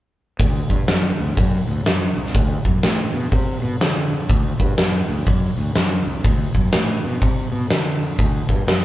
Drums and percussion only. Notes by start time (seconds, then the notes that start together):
0.40 kick, open hi-hat
0.70 kick
0.88 snare, open hi-hat
1.37 kick, open hi-hat
1.86 snare, open hi-hat
2.26 snare
2.34 kick, open hi-hat
2.65 kick
2.83 snare, open hi-hat
3.32 kick, open hi-hat
3.81 snare, open hi-hat
4.28 kick, open hi-hat
4.60 kick
4.77 snare, open hi-hat
5.26 kick, open hi-hat
5.75 snare, open hi-hat
6.24 kick, open hi-hat
6.55 kick
6.72 snare, open hi-hat
7.22 kick, open hi-hat
7.70 snare, open hi-hat
8.18 kick, open hi-hat
8.49 kick
8.68 snare, open hi-hat